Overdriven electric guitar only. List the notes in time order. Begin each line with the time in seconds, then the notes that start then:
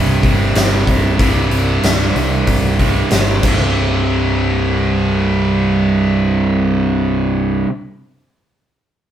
Already playing: C2 G2 C3
1.18 C2 G2 C3
3.42 C2 G2 C3